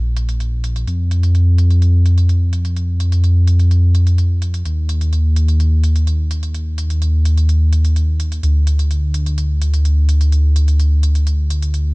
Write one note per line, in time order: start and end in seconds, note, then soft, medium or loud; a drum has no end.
0.00 0.85 A#1 medium
0.17 closed hi-hat medium
0.29 closed hi-hat soft
0.40 closed hi-hat soft
0.64 closed hi-hat medium
0.76 closed hi-hat soft
0.87 4.63 F2 medium
0.87 closed hi-hat soft
1.11 closed hi-hat medium
1.23 closed hi-hat soft
1.35 closed hi-hat soft
1.58 closed hi-hat medium
1.70 closed hi-hat soft
1.82 closed hi-hat medium
2.06 closed hi-hat medium
2.18 closed hi-hat medium
2.29 closed hi-hat soft
2.53 closed hi-hat medium
2.65 closed hi-hat soft
2.76 closed hi-hat soft
3.00 closed hi-hat medium
3.12 closed hi-hat medium
3.24 closed hi-hat soft
3.47 closed hi-hat medium
3.59 closed hi-hat medium
3.71 closed hi-hat medium
3.95 closed hi-hat medium
4.07 closed hi-hat medium
4.18 closed hi-hat soft
4.42 closed hi-hat medium
4.54 closed hi-hat medium
4.65 8.41 D#2 medium
4.65 closed hi-hat medium
4.89 closed hi-hat medium
5.01 closed hi-hat medium
5.13 closed hi-hat medium
5.36 closed hi-hat medium
5.48 closed hi-hat medium
5.60 closed hi-hat medium
5.84 closed hi-hat medium
5.96 closed hi-hat medium
6.07 closed hi-hat medium
6.31 closed hi-hat medium
6.43 closed hi-hat medium
6.54 closed hi-hat medium
6.78 closed hi-hat medium
6.90 closed hi-hat medium
7.02 closed hi-hat medium
7.25 closed hi-hat medium
7.38 closed hi-hat medium
7.49 closed hi-hat medium
7.73 closed hi-hat medium
7.85 closed hi-hat medium
7.96 closed hi-hat medium
8.20 closed hi-hat medium
8.32 closed hi-hat medium
8.43 11.94 D2 medium
8.43 closed hi-hat medium
8.67 closed hi-hat medium
8.79 closed hi-hat medium
8.91 closed hi-hat medium
9.14 closed hi-hat medium
9.26 closed hi-hat medium
9.38 closed hi-hat medium
9.62 closed hi-hat medium
9.74 closed hi-hat medium
9.85 closed hi-hat medium
10.09 closed hi-hat medium
10.21 closed hi-hat medium
10.32 closed hi-hat medium
10.56 closed hi-hat medium
10.68 closed hi-hat medium
10.80 closed hi-hat medium
11.03 closed hi-hat medium
11.15 closed hi-hat medium
11.27 closed hi-hat medium
11.50 closed hi-hat medium
11.62 closed hi-hat medium
11.74 closed hi-hat medium